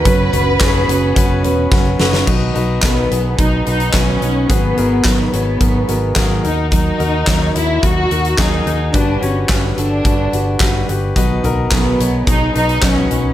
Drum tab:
CC |----------------|x---------------|----------------|----------------|
HH |x-x-x-x-x-x-----|--x-x-x-x-xxx-x-|x-x-x-x-x-x-x-x-|x-x-x-x-x-xxx-x-|
CP |----x-----------|----x-------x---|----x-------x---|----x-------x---|
SD |----o-------o-oo|----o-------o---|----o-------o---|----o-------o---|
FT |--o-------------|----------------|----------------|----------------|
BD |o---o---o---o---|o---o---o---o---|o---o---o---o---|o---o---o---o---|

CC |----------------|----------------|
HH |x-x-x-x-x-x-x-x-|x-x-x-x-x-xxx-x-|
CP |----x-------x---|----x-------x---|
SD |----o-------o---|----o-------o---|
FT |----------------|--o----------o--|
BD |o---o---o---o---|o---o---o---o---|